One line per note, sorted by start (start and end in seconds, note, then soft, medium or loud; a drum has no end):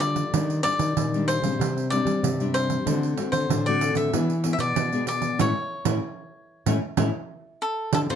0.00 0.24 D3 medium
0.00 0.30 D3 soft
0.00 0.29 G3 medium
0.00 0.29 A#3 soft
0.00 0.29 F4 medium
0.00 0.62 D5 medium
0.00 pandeiro medium
0.16 pandeiro soft
0.34 0.60 D#3 medium
0.34 0.94 D#3 soft
0.34 0.60 G3 soft
0.34 0.60 A#3 soft
0.34 0.61 D4 medium
0.34 pandeiro medium
0.50 pandeiro soft
0.63 1.07 G3 soft
0.63 1.08 A#3 soft
0.63 1.08 D4 soft
0.63 1.27 D5 medium
0.63 pandeiro medium
0.79 0.93 D#3 medium
0.79 pandeiro medium
0.97 1.58 A#2 soft
0.97 1.37 D#3 medium
0.97 pandeiro medium
1.14 1.40 G3 soft
1.14 1.40 A#3 soft
1.14 1.41 D4 medium
1.14 pandeiro soft
1.28 1.90 C5 medium
1.28 pandeiro medium
1.42 1.56 C#3 medium
1.42 1.87 G3 soft
1.42 1.87 C4 medium
1.42 1.87 D4 soft
1.42 pandeiro soft
1.60 2.00 C3 medium
1.60 2.21 C3 soft
1.60 pandeiro medium
1.78 pandeiro soft
1.90 2.22 G3 soft
1.90 2.22 C4 soft
1.90 2.22 D4 medium
1.90 2.54 D5 medium
1.90 pandeiro medium
2.05 2.20 G3 medium
2.05 pandeiro soft
2.23 2.84 G2 soft
2.23 2.77 C3 medium
2.23 pandeiro medium
2.40 2.82 G3 medium
2.40 2.83 C4 medium
2.40 2.83 D4 medium
2.40 pandeiro soft
2.54 3.31 C5 medium
2.54 pandeiro medium
2.70 pandeiro soft
2.86 3.13 D3 medium
2.86 3.48 D3 soft
2.86 3.14 A3 soft
2.86 3.14 C4 soft
2.86 3.15 F#4 soft
2.86 pandeiro medium
3.03 pandeiro soft
3.17 3.48 A3 soft
3.17 3.48 C4 soft
3.17 3.49 F#4 medium
3.17 pandeiro medium
3.32 3.47 D3 medium
3.32 3.66 C5 medium
3.32 pandeiro medium
3.50 4.11 A2 soft
3.50 3.90 D3 medium
3.50 pandeiro medium
3.66 4.09 A3 medium
3.66 4.09 C4 medium
3.66 4.09 F#4 medium
3.66 3.95 D5 medium
3.66 pandeiro soft
3.81 pandeiro medium
3.95 4.10 D3 medium
3.95 4.49 E5 medium
3.95 pandeiro soft
4.13 4.74 E3 soft
4.13 4.54 E3 medium
4.13 4.32 B3 soft
4.13 4.33 D4 soft
4.13 4.32 G#4 medium
4.13 pandeiro medium
4.30 pandeiro soft
4.44 4.74 B3 soft
4.44 4.74 D4 soft
4.44 4.75 G#4 soft
4.44 pandeiro medium
4.53 4.60 E5 medium
4.58 4.73 B2 medium
4.58 5.05 D5 medium
4.58 pandeiro soft
4.76 5.30 B2 medium
4.76 5.37 B2 soft
4.76 pandeiro medium
4.93 5.35 B3 medium
4.93 5.36 D4 medium
4.93 5.36 G#4 medium
4.93 pandeiro soft
5.07 5.38 D5 medium
5.07 pandeiro medium
5.22 pandeiro soft
5.39 5.52 A2 medium
5.39 5.50 A3 medium
5.39 5.50 C#4 medium
5.39 5.49 E4 medium
5.39 7.26 C#5 medium
5.39 pandeiro medium
5.85 5.98 A2 medium
5.85 5.97 A3 medium
5.85 5.96 C#4 medium
5.85 5.97 E4 medium
5.85 pandeiro medium
6.66 6.78 A2 medium
6.66 6.77 A3 medium
6.66 6.77 C#4 medium
6.66 6.77 E4 medium
6.66 pandeiro medium
6.97 7.10 A2 medium
6.97 7.08 A3 medium
6.97 7.08 C#4 medium
6.97 7.08 E4 medium
6.97 pandeiro medium
7.62 7.91 A4 medium
7.93 8.15 D3 soft
7.93 8.06 D3 medium
7.93 8.00 A4 medium
7.93 pandeiro medium
8.09 8.15 D3 medium
8.09 8.15 C4 medium
8.09 8.15 F4 medium
8.09 8.15 A4 medium
8.09 8.15 C5 medium
8.09 pandeiro soft